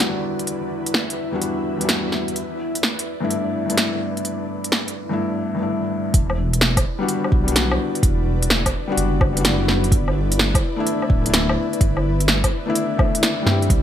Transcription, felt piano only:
Already playing: E2 G3 B3 D4 F#4
1.31 E2 G3 B3 D4
1.35 F#4
1.77 E2 G3
1.81 B3 D4
1.85 F#4
3.20 G2 A3 B3 D4
3.25 E4
3.66 G2 A3
3.70 B3 D4 E4
5.09 G2 A3 B3 D4 E4
5.55 G2 A3
5.59 B3 D4 E4
6.99 G3 B3 D4 F#4
7.44 G3 B3
7.49 D4 F#4
8.88 G3 B3 D4
8.92 F#4
9.33 G3 B3
9.38 D4 F#4
10.76 A3 B3 D4 E4
11.22 A3 B3
11.27 D4 E4
12.66 A3 B3 D4 E4
12.97 A3 B3 D4 E4
13.42 G3 C4
13.48 E4 G4

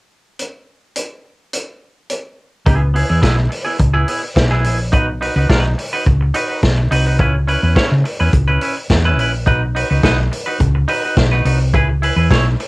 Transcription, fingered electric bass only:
2.66 C#2
3.10 E2
3.23 B1
3.80 C#2
4.36 B1
4.65 A#1
4.93 B1
5.36 C#2
5.50 B1
6.06 C#2
6.63 B1
6.91 C2
7.19 C#2
7.63 E2
7.76 muted fingered electric bass stroke
7.92 C#3
8.21 E2
8.33 C#2
8.90 E2
9.18 A#1
9.47 B1
9.91 C#2
10.04 B1
10.60 C#2
11.17 B1
11.45 C2
11.74 C#2
12.16 E2
12.31 B1

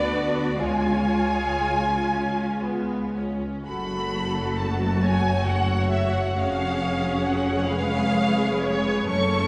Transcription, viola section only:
Already playing: B3 D4
0.58 G#3 F4
3.67 A3 F#4
6.38 C#4 G#4
7.69 G#3
9.07 A3 C#4

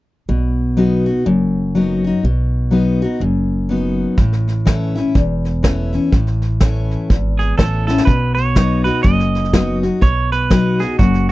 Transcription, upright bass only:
0.29 B1
1.26 F#1
2.23 B1
3.20 F#1
4.18 A1
5.15 E1
6.12 A1
7.10 G#1
7.59 A1
8.07 B1
9.04 F#1
10.02 B1
10.99 F#1

